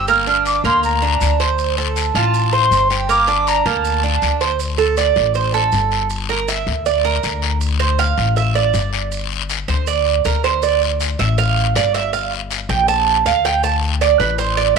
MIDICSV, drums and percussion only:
0, 0, Header, 1, 2, 480
1, 0, Start_track
1, 0, Key_signature, -1, "minor"
1, 0, Tempo, 376648
1, 102, Time_signature, 4, 2, 24, 8
1, 18845, End_track
2, 0, Start_track
2, 0, Title_t, "Drums"
2, 99, Note_on_c, 9, 70, 74
2, 102, Note_on_c, 9, 74, 70
2, 226, Note_off_c, 9, 70, 0
2, 230, Note_off_c, 9, 74, 0
2, 340, Note_on_c, 9, 70, 30
2, 468, Note_off_c, 9, 70, 0
2, 579, Note_on_c, 9, 73, 69
2, 582, Note_on_c, 9, 70, 70
2, 707, Note_off_c, 9, 73, 0
2, 710, Note_off_c, 9, 70, 0
2, 819, Note_on_c, 9, 70, 29
2, 823, Note_on_c, 9, 73, 70
2, 947, Note_off_c, 9, 70, 0
2, 950, Note_off_c, 9, 73, 0
2, 1061, Note_on_c, 9, 70, 69
2, 1063, Note_on_c, 9, 74, 70
2, 1188, Note_off_c, 9, 70, 0
2, 1190, Note_off_c, 9, 74, 0
2, 1302, Note_on_c, 9, 70, 27
2, 1430, Note_off_c, 9, 70, 0
2, 1539, Note_on_c, 9, 70, 74
2, 1543, Note_on_c, 9, 73, 74
2, 1666, Note_off_c, 9, 70, 0
2, 1670, Note_off_c, 9, 73, 0
2, 1780, Note_on_c, 9, 70, 31
2, 1784, Note_on_c, 9, 73, 69
2, 1908, Note_off_c, 9, 70, 0
2, 1912, Note_off_c, 9, 73, 0
2, 2019, Note_on_c, 9, 70, 73
2, 2023, Note_on_c, 9, 74, 71
2, 2146, Note_off_c, 9, 70, 0
2, 2151, Note_off_c, 9, 74, 0
2, 2261, Note_on_c, 9, 70, 29
2, 2388, Note_off_c, 9, 70, 0
2, 2499, Note_on_c, 9, 73, 69
2, 2502, Note_on_c, 9, 70, 72
2, 2627, Note_off_c, 9, 73, 0
2, 2629, Note_off_c, 9, 70, 0
2, 2741, Note_on_c, 9, 73, 71
2, 2742, Note_on_c, 9, 70, 33
2, 2869, Note_off_c, 9, 70, 0
2, 2869, Note_off_c, 9, 73, 0
2, 2982, Note_on_c, 9, 70, 74
2, 2983, Note_on_c, 9, 74, 74
2, 3110, Note_off_c, 9, 70, 0
2, 3110, Note_off_c, 9, 74, 0
2, 3222, Note_on_c, 9, 70, 27
2, 3349, Note_off_c, 9, 70, 0
2, 3462, Note_on_c, 9, 70, 76
2, 3465, Note_on_c, 9, 73, 74
2, 3589, Note_off_c, 9, 70, 0
2, 3592, Note_off_c, 9, 73, 0
2, 3706, Note_on_c, 9, 73, 75
2, 3708, Note_on_c, 9, 70, 30
2, 3833, Note_off_c, 9, 73, 0
2, 3836, Note_off_c, 9, 70, 0
2, 3943, Note_on_c, 9, 70, 75
2, 3944, Note_on_c, 9, 74, 75
2, 4071, Note_off_c, 9, 70, 0
2, 4071, Note_off_c, 9, 74, 0
2, 4187, Note_on_c, 9, 70, 30
2, 4315, Note_off_c, 9, 70, 0
2, 4423, Note_on_c, 9, 73, 71
2, 4425, Note_on_c, 9, 70, 70
2, 4550, Note_off_c, 9, 73, 0
2, 4553, Note_off_c, 9, 70, 0
2, 4661, Note_on_c, 9, 70, 29
2, 4663, Note_on_c, 9, 73, 70
2, 4788, Note_off_c, 9, 70, 0
2, 4791, Note_off_c, 9, 73, 0
2, 4901, Note_on_c, 9, 74, 69
2, 4902, Note_on_c, 9, 70, 77
2, 5029, Note_off_c, 9, 70, 0
2, 5029, Note_off_c, 9, 74, 0
2, 5136, Note_on_c, 9, 70, 27
2, 5264, Note_off_c, 9, 70, 0
2, 5378, Note_on_c, 9, 70, 71
2, 5380, Note_on_c, 9, 73, 74
2, 5505, Note_off_c, 9, 70, 0
2, 5508, Note_off_c, 9, 73, 0
2, 5617, Note_on_c, 9, 70, 30
2, 5618, Note_on_c, 9, 73, 63
2, 5744, Note_off_c, 9, 70, 0
2, 5745, Note_off_c, 9, 73, 0
2, 5856, Note_on_c, 9, 70, 74
2, 5857, Note_on_c, 9, 74, 69
2, 5984, Note_off_c, 9, 70, 0
2, 5985, Note_off_c, 9, 74, 0
2, 6096, Note_on_c, 9, 70, 30
2, 6224, Note_off_c, 9, 70, 0
2, 6331, Note_on_c, 9, 70, 72
2, 6337, Note_on_c, 9, 73, 69
2, 6458, Note_off_c, 9, 70, 0
2, 6465, Note_off_c, 9, 73, 0
2, 6572, Note_on_c, 9, 70, 32
2, 6578, Note_on_c, 9, 73, 74
2, 6699, Note_off_c, 9, 70, 0
2, 6705, Note_off_c, 9, 73, 0
2, 6809, Note_on_c, 9, 70, 70
2, 6821, Note_on_c, 9, 74, 70
2, 6937, Note_off_c, 9, 70, 0
2, 6949, Note_off_c, 9, 74, 0
2, 7052, Note_on_c, 9, 70, 26
2, 7179, Note_off_c, 9, 70, 0
2, 7288, Note_on_c, 9, 70, 63
2, 7300, Note_on_c, 9, 73, 71
2, 7415, Note_off_c, 9, 70, 0
2, 7427, Note_off_c, 9, 73, 0
2, 7531, Note_on_c, 9, 70, 31
2, 7542, Note_on_c, 9, 73, 74
2, 7659, Note_off_c, 9, 70, 0
2, 7669, Note_off_c, 9, 73, 0
2, 7771, Note_on_c, 9, 70, 77
2, 7782, Note_on_c, 9, 74, 70
2, 7898, Note_off_c, 9, 70, 0
2, 7909, Note_off_c, 9, 74, 0
2, 8016, Note_on_c, 9, 70, 30
2, 8143, Note_off_c, 9, 70, 0
2, 8258, Note_on_c, 9, 70, 72
2, 8263, Note_on_c, 9, 73, 75
2, 8386, Note_off_c, 9, 70, 0
2, 8391, Note_off_c, 9, 73, 0
2, 8497, Note_on_c, 9, 70, 29
2, 8499, Note_on_c, 9, 73, 70
2, 8625, Note_off_c, 9, 70, 0
2, 8627, Note_off_c, 9, 73, 0
2, 8741, Note_on_c, 9, 70, 72
2, 8741, Note_on_c, 9, 74, 67
2, 8868, Note_off_c, 9, 70, 0
2, 8869, Note_off_c, 9, 74, 0
2, 8978, Note_on_c, 9, 70, 26
2, 9106, Note_off_c, 9, 70, 0
2, 9218, Note_on_c, 9, 70, 65
2, 9218, Note_on_c, 9, 73, 70
2, 9345, Note_off_c, 9, 70, 0
2, 9346, Note_off_c, 9, 73, 0
2, 9457, Note_on_c, 9, 70, 32
2, 9458, Note_on_c, 9, 73, 71
2, 9584, Note_off_c, 9, 70, 0
2, 9586, Note_off_c, 9, 73, 0
2, 9697, Note_on_c, 9, 70, 80
2, 9699, Note_on_c, 9, 74, 68
2, 9825, Note_off_c, 9, 70, 0
2, 9826, Note_off_c, 9, 74, 0
2, 9936, Note_on_c, 9, 70, 32
2, 10063, Note_off_c, 9, 70, 0
2, 10178, Note_on_c, 9, 70, 67
2, 10179, Note_on_c, 9, 73, 71
2, 10305, Note_off_c, 9, 70, 0
2, 10307, Note_off_c, 9, 73, 0
2, 10420, Note_on_c, 9, 73, 76
2, 10424, Note_on_c, 9, 70, 30
2, 10547, Note_off_c, 9, 73, 0
2, 10552, Note_off_c, 9, 70, 0
2, 10658, Note_on_c, 9, 74, 67
2, 10660, Note_on_c, 9, 70, 72
2, 10785, Note_off_c, 9, 74, 0
2, 10787, Note_off_c, 9, 70, 0
2, 10898, Note_on_c, 9, 70, 26
2, 11025, Note_off_c, 9, 70, 0
2, 11135, Note_on_c, 9, 73, 74
2, 11137, Note_on_c, 9, 70, 68
2, 11262, Note_off_c, 9, 73, 0
2, 11264, Note_off_c, 9, 70, 0
2, 11376, Note_on_c, 9, 73, 74
2, 11383, Note_on_c, 9, 70, 28
2, 11503, Note_off_c, 9, 73, 0
2, 11510, Note_off_c, 9, 70, 0
2, 11620, Note_on_c, 9, 70, 67
2, 11620, Note_on_c, 9, 74, 77
2, 11747, Note_off_c, 9, 70, 0
2, 11747, Note_off_c, 9, 74, 0
2, 11864, Note_on_c, 9, 70, 30
2, 11992, Note_off_c, 9, 70, 0
2, 12099, Note_on_c, 9, 70, 75
2, 12100, Note_on_c, 9, 73, 75
2, 12227, Note_off_c, 9, 70, 0
2, 12228, Note_off_c, 9, 73, 0
2, 12342, Note_on_c, 9, 70, 30
2, 12343, Note_on_c, 9, 73, 74
2, 12469, Note_off_c, 9, 70, 0
2, 12471, Note_off_c, 9, 73, 0
2, 12576, Note_on_c, 9, 70, 73
2, 12583, Note_on_c, 9, 74, 76
2, 12704, Note_off_c, 9, 70, 0
2, 12710, Note_off_c, 9, 74, 0
2, 12818, Note_on_c, 9, 70, 27
2, 12945, Note_off_c, 9, 70, 0
2, 13058, Note_on_c, 9, 70, 71
2, 13064, Note_on_c, 9, 73, 71
2, 13185, Note_off_c, 9, 70, 0
2, 13192, Note_off_c, 9, 73, 0
2, 13296, Note_on_c, 9, 70, 29
2, 13308, Note_on_c, 9, 73, 65
2, 13423, Note_off_c, 9, 70, 0
2, 13436, Note_off_c, 9, 73, 0
2, 13538, Note_on_c, 9, 70, 80
2, 13545, Note_on_c, 9, 74, 77
2, 13665, Note_off_c, 9, 70, 0
2, 13673, Note_off_c, 9, 74, 0
2, 13781, Note_on_c, 9, 70, 28
2, 13909, Note_off_c, 9, 70, 0
2, 14020, Note_on_c, 9, 70, 69
2, 14025, Note_on_c, 9, 73, 69
2, 14148, Note_off_c, 9, 70, 0
2, 14152, Note_off_c, 9, 73, 0
2, 14257, Note_on_c, 9, 70, 34
2, 14261, Note_on_c, 9, 73, 69
2, 14384, Note_off_c, 9, 70, 0
2, 14389, Note_off_c, 9, 73, 0
2, 14501, Note_on_c, 9, 70, 74
2, 14501, Note_on_c, 9, 74, 74
2, 14628, Note_off_c, 9, 70, 0
2, 14629, Note_off_c, 9, 74, 0
2, 14748, Note_on_c, 9, 70, 28
2, 14875, Note_off_c, 9, 70, 0
2, 14979, Note_on_c, 9, 73, 79
2, 14987, Note_on_c, 9, 70, 69
2, 15107, Note_off_c, 9, 73, 0
2, 15114, Note_off_c, 9, 70, 0
2, 15220, Note_on_c, 9, 73, 73
2, 15222, Note_on_c, 9, 70, 29
2, 15347, Note_off_c, 9, 73, 0
2, 15349, Note_off_c, 9, 70, 0
2, 15459, Note_on_c, 9, 74, 72
2, 15464, Note_on_c, 9, 70, 72
2, 15587, Note_off_c, 9, 74, 0
2, 15592, Note_off_c, 9, 70, 0
2, 15705, Note_on_c, 9, 70, 28
2, 15833, Note_off_c, 9, 70, 0
2, 15937, Note_on_c, 9, 73, 70
2, 15942, Note_on_c, 9, 70, 71
2, 16064, Note_off_c, 9, 73, 0
2, 16070, Note_off_c, 9, 70, 0
2, 16178, Note_on_c, 9, 73, 66
2, 16180, Note_on_c, 9, 70, 33
2, 16306, Note_off_c, 9, 73, 0
2, 16307, Note_off_c, 9, 70, 0
2, 16417, Note_on_c, 9, 70, 75
2, 16418, Note_on_c, 9, 74, 70
2, 16544, Note_off_c, 9, 70, 0
2, 16546, Note_off_c, 9, 74, 0
2, 16656, Note_on_c, 9, 70, 25
2, 16784, Note_off_c, 9, 70, 0
2, 16898, Note_on_c, 9, 70, 69
2, 16901, Note_on_c, 9, 73, 73
2, 17025, Note_off_c, 9, 70, 0
2, 17028, Note_off_c, 9, 73, 0
2, 17137, Note_on_c, 9, 70, 29
2, 17142, Note_on_c, 9, 73, 68
2, 17264, Note_off_c, 9, 70, 0
2, 17269, Note_off_c, 9, 73, 0
2, 17374, Note_on_c, 9, 70, 72
2, 17384, Note_on_c, 9, 74, 67
2, 17502, Note_off_c, 9, 70, 0
2, 17511, Note_off_c, 9, 74, 0
2, 17620, Note_on_c, 9, 70, 29
2, 17747, Note_off_c, 9, 70, 0
2, 17857, Note_on_c, 9, 70, 68
2, 17858, Note_on_c, 9, 73, 70
2, 17984, Note_off_c, 9, 70, 0
2, 17985, Note_off_c, 9, 73, 0
2, 18095, Note_on_c, 9, 70, 30
2, 18095, Note_on_c, 9, 73, 68
2, 18222, Note_off_c, 9, 73, 0
2, 18223, Note_off_c, 9, 70, 0
2, 18330, Note_on_c, 9, 70, 73
2, 18338, Note_on_c, 9, 74, 74
2, 18458, Note_off_c, 9, 70, 0
2, 18466, Note_off_c, 9, 74, 0
2, 18576, Note_on_c, 9, 70, 29
2, 18704, Note_off_c, 9, 70, 0
2, 18845, End_track
0, 0, End_of_file